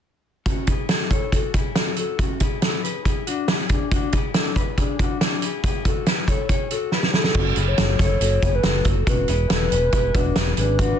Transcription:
0.46 C#4 F#4, kick, closed hi-hat
0.67 E4 G#4, kick, closed hi-hat
0.89 F#4 A4, snare, closed hi-hat
1.11 A4 C#5, kick, closed hi-hat
1.32 F#4 A4, kick, closed hi-hat
1.54 E4 G#4, kick, closed hi-hat
1.76 F#4 A4, snare, closed hi-hat
1.96 F#4 A4, closed hi-hat
2.19 C#4 F#4, kick, closed hi-hat
2.40 E4 G#4, kick, closed hi-hat
2.62 E4 A4, snare, closed hi-hat
2.84 G#4 B4, closed hi-hat
3.05 E4 G#4, kick, closed hi-hat
3.27 D4 F#4, closed hi-hat
3.48 E4 G#4, snare, closed hi-hat
3.69 D4 G#4, kick, closed hi-hat
3.92 D4 F#4, kick, closed hi-hat
4.12 E4 G#4, kick, closed hi-hat
4.34 D4 A4, snare, closed hi-hat
4.56 G#4 B4, kick, closed hi-hat
4.78 D4 G#4, kick, closed hi-hat
4.99 D4 F#4, kick, closed hi-hat
5.21 D4 G#4, snare, closed hi-hat
5.42 E4 G#4, closed hi-hat
5.64 E4 G#4, kick, closed hi-hat
5.85 F#4 A4, kick, closed hi-hat
6.06 G#4 B4, snare, closed hi-hat
6.28 A4 C#5, kick, closed hi-hat
6.49 G#4 C#5, kick, closed hi-hat
6.71 F#4 A4, closed hi-hat
6.92 G#4 B4, snare
7.03 snare
7.14 E4 G#4 A4, snare
7.24 snare
7.34 F#1 C#4 F#4, kick, crash
7.56 F#1 E4 G#4, closed hi-hat
7.68 C#5
7.78 F#1 F#4 A4, snare, closed hi-hat
7.99 F#1 A4 C#5, kick, snare, closed hi-hat
8.20 F#1 F#4 A4, closed hi-hat
8.42 F#1 E4 G#4, kick, closed hi-hat
8.55 B4
8.63 F#1 F#4 A4, snare, closed hi-hat
8.85 F#1 F#4 A4, kick, closed hi-hat
9.07 E1 C#4 F#4 B4, kick, closed hi-hat
9.28 E1 E4 G#4 B4, closed hi-hat
9.50 E1 E4 A4, snare, closed hi-hat
9.72 E1 G#4 B4, closed hi-hat
9.92 E1 E4 G#4, kick, closed hi-hat
10.15 E1 D4 F#4, kick, closed hi-hat
10.36 E1 E4 G#4, snare, closed hi-hat
10.57 G#1 D4 G#4 B4, closed hi-hat
10.79 D4 F#4, kick, closed hi-hat

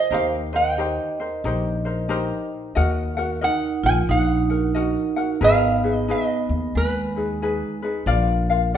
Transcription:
Already playing: F4 G#4 A#4 D#5
0.11 D#2 D#4 G4 A#4 C5 F5
0.53 D#4 A#4 C5 D#5 G5
0.78 D#4 G4 A#4 C5
1.20 D#4 A#4 C5
1.44 A#1 D#4 G4 A#4 C5
1.85 D#4 A#4 C5
2.09 D#4 G4 A#4 C5
2.75 D#2 F#4 A#4 D#5 F#5
3.17 F#4 A#4 F#5
3.41 D#4 A#4 D#5 F#5
3.83 A#1 F4 G#5
4.09 A#1 D#4 F#5
4.50 F#4 A#4 F#5
4.75 F#4 A#4 D#5 F#5
5.16 F#4 A#4 F#5
5.41 G#1 B3 D#4 G#4 A#4 B4 F5
5.84 D#4 G#4 B4
5.95 D#5
6.08 B3 D#4 G#4 B4 D#5
6.49 D#2
6.75 D#2 G#3 B4
7.16 D#4 G#4 B4
7.42 D#4 G#4 B4
7.82 D#4 G#4 B4
8.06 A#1 F4 A#4 D5 F5
8.50 F4 A#4 F5

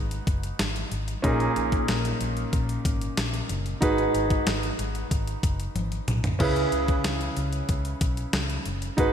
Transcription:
Already playing: G#1 G#2 D#4 F#4 G#4 B4
0.11 closed hi-hat
0.27 F#1, kick, closed hi-hat
0.43 closed hi-hat
0.59 G#1, snare, closed hi-hat
0.76 closed hi-hat
0.92 G#1, closed hi-hat
1.08 closed hi-hat
1.22 A#1 A#2 C#4 D#4 G#4 A#4, kick, closed hi-hat
1.40 closed hi-hat
1.56 A#1, closed hi-hat
1.72 kick, closed hi-hat
1.88 A#1, snare, closed hi-hat
2.05 closed hi-hat
2.21 A#1, closed hi-hat
2.37 closed hi-hat
2.53 A#1, kick, closed hi-hat
2.69 closed hi-hat
2.85 G#1, kick, closed hi-hat
3.01 closed hi-hat
3.17 A#1, snare, closed hi-hat
3.34 closed hi-hat
3.49 F#1, closed hi-hat
3.66 closed hi-hat
3.81 G#1 G#2 D#4 F#4 G#4 B4, kick, closed hi-hat
3.98 closed hi-hat
4.14 G#1, closed hi-hat
4.30 kick, closed hi-hat
4.46 G#1, snare, closed hi-hat
4.63 closed hi-hat
4.79 G#1, closed hi-hat
4.95 closed hi-hat
5.11 G#1, kick, closed hi-hat
5.27 closed hi-hat
5.43 F#1, kick, closed hi-hat
5.60 closed hi-hat
5.75 G#1, closed hi-hat, high tom
5.92 closed hi-hat
6.08 B1, closed hi-hat, mid tom
6.24 closed hi-hat, floor tom
6.39 C#2 C#3 C#4 E4 G#4 B4, kick, crash
6.56 closed hi-hat
6.72 C#2, closed hi-hat
6.88 kick, closed hi-hat
7.04 C#2, snare, closed hi-hat
7.21 closed hi-hat
7.37 C#2, closed hi-hat
7.53 closed hi-hat
7.69 C#2, kick, closed hi-hat
7.85 closed hi-hat
8.01 B1, kick, closed hi-hat
8.17 closed hi-hat
8.33 C#2, snare, closed hi-hat
8.50 closed hi-hat
8.66 F#1, closed hi-hat
8.82 closed hi-hat
8.97 G#1 G#2 D#4 F#4 G#4 B4, kick, closed hi-hat

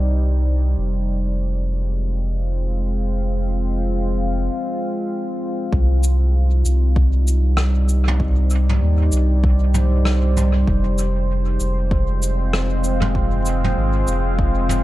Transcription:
Already playing: C2 G3 D#4 C5 D5
0.78 F1 G#3
0.90 C4 F4
1.37 F5
5.73 C2 G3, kick
5.80 D#4
6.03 cabasa
6.52 C5
6.65 C2, cabasa
6.73 D5
6.96 kick
7.28 cabasa
7.57 cross-stick
7.89 cabasa
8.08 mid tom
8.20 kick
8.50 cabasa
8.69 mid tom
8.82 D#2
9.12 C2, cabasa
9.44 kick
9.74 mid tom, cabasa
10.05 cross-stick
10.37 mid tom, cabasa
10.67 F1 G#3, kick
10.81 C4
10.98 cabasa
11.09 F4
11.54 F5
11.60 F1, cabasa
11.91 kick
12.22 cabasa
12.53 cross-stick
12.84 cabasa
13.02 mid tom
13.15 kick
13.46 cabasa
13.64 mid tom
13.77 G#1
14.07 F1, cabasa
14.39 kick
14.69 mid tom, cabasa

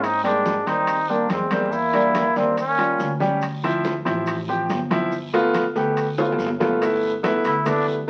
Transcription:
Already playing: G#2
0.04 C4 D#4, high conga, high timbale, long guiro, maracas
0.23 G3 G#3 A#3 C4 D4, high conga, high timbale
0.46 high conga, short guiro, maracas
0.66 D#2 G3 A#3 C4 D#4, high conga, high timbale, short guiro, maracas
0.87 high conga, high timbale, long guiro, maracas
1.09 G3 A#3 C4 D4, high conga
1.29 E2 G#3 C4, high conga, high timbale, short guiro, maracas
1.51 G3 G#3 A#3 C4, high conga, high timbale, short guiro, maracas
1.72 A#3 E4, high conga, long guiro, maracas
1.93 G3 A#3 D4, high conga, high timbale
2.15 high conga, high timbale, short guiro, maracas
2.35 D#2 G3 A#3 C4 D4, high conga, short guiro, maracas
2.57 A#3 C#4, high conga, high timbale, long guiro, maracas
2.78 G3 C#4 F4, high conga, high timbale
3.00 D2, high conga, short guiro, maracas
3.20 G3 C#4 G4, high conga, short guiro, maracas
3.42 high conga, high timbale, long guiro, maracas
3.63 F3 C4 E4, high conga, high timbale
3.84 high conga, short guiro, maracas
4.05 A1 F3 C4 E4, high conga, high timbale, short guiro, maracas
4.26 high conga, high timbale, long guiro, maracas
4.48 F3 C4 G4, high conga
4.69 G1, high conga, high timbale, low timbale, short guiro, maracas
4.90 F3 C4 E4, high conga, high timbale, short guiro, maracas
5.12 high conga, long guiro, maracas
5.33 A3 B3 F4, high conga, high timbale
5.54 high conga, high timbale, short guiro, maracas
5.75 D2 A3 B3 G4, high conga, short guiro, maracas
5.97 high conga, high timbale, long guiro, maracas
6.18 A3 B3 F4, high conga, high timbale
6.32 low timbale
6.38 G1, high conga, short guiro, maracas
6.46 low timbale
6.60 A3 B3 F4, high conga, low timbale, short guiro, maracas
6.82 A3 B3 E4, high conga, high timbale, long guiro, maracas
7.03 high conga, maracas
7.23 A3 B3 E4, high conga, high timbale, short guiro, maracas
7.44 D2 E4, high conga, high timbale, short guiro, maracas
7.65 A3 B3 D4 E4, high conga, low conga, high timbale, long guiro, maracas
7.87 G3, high conga, maracas

